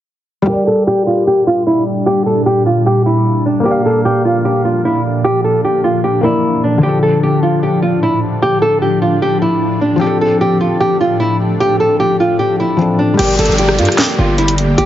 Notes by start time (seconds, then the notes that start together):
0.42 G3 G4
0.47 A#2 G3 D4 G4 A#4
0.53 D5
0.67 A4
0.87 G4
1.07 F4
1.27 G4
1.47 F4
1.67 E4
2.06 G4
2.26 A4
2.46 G4
2.66 F4
2.86 G4
3.06 E4
3.46 D4
3.60 A#3 A#4
3.65 F3 D4 G4 D5
3.71 F5
3.86 A4
4.05 G4
4.25 F4
4.45 G4
4.65 F4
4.85 E4
5.24 G4
5.44 A4
5.65 G4
5.84 F4
6.04 G4
6.21 A#3 E4 A#4 D5
6.64 D4
6.78 D3 D4
6.83 A2 F3 G4
6.89 A4
7.03 A4
7.23 G4
7.43 F4
7.63 G4
7.82 F4
8.03 E4
8.42 G4
8.62 A4
8.82 G4
9.02 F4
9.22 G4
9.42 E4
9.81 D4
9.96 F3 C4
10.01 A2 D4 G4
10.07 A4
10.21 A4
10.41 G4
10.61 F4
10.80 G4
11.01 F4
11.20 E4
11.60 G4
11.80 A4
12.00 G4
12.20 F4
12.39 G4
12.60 E4
12.77 F3 C4 D4
12.82 A4
12.99 D4
13.14 G3 G4
13.19 G1 D3 A#3 G4 A#4, closed hi-hat, crash, downlifter
13.25 D5
13.39 G1 A4, closed hi-hat
13.46 G1, closed hi-hat
13.52 closed hi-hat
13.58 G4, closed hi-hat
13.69 cross-stick
13.79 G2 F4, closed hi-hat
13.85 cross-stick, closed hi-hat
13.92 closed hi-hat
13.98 G4, snare, clap, closed hi-hat
14.19 G1 F4
14.38 E4, closed hi-hat
14.48 closed hi-hat
14.58 closed hi-hat
14.78 G1 G4, closed hi-hat